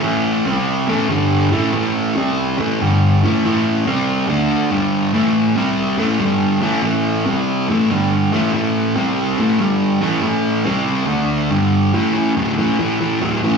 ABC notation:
X:1
M:4/4
L:1/8
Q:1/4=141
K:Am
V:1 name="Distorted electric guitar" clef=bass
[A,,E,A,]2 [C,G,C]2 [A,,E,A,] [G,,D,G,]2 [A,,E,A,] | [A,,E,A,]2 [C,G,C]2 [A,,E,A,] [G,,D,G,]2 [A,,E,A,] | [A,,E,A,]2 [C,G,C]2 [D,A,D]2 [G,,D,G,]2 | [A,,E,A,]2 [C,G,C]2 [A,,E,A,] [G,,D,G,]2 [A,,E,A,] |
[A,,E,A,]2 [C,G,C]2 [A,,E,A,] [G,,D,G,]2 [A,,E,A,] | [A,,E,A,]2 [C,G,C]2 [A,,E,A,] [G,,D,G,]2 [A,,E,A,] | [A,,E,A,]2 [C,G,C]2 [D,A,D]2 [G,,D,G,]2 | [A,,E,] [A,,E,] [A,,^F,] [A,,E,] [A,,E,] [A,,E,] [A,,F,] [A,,E,] |]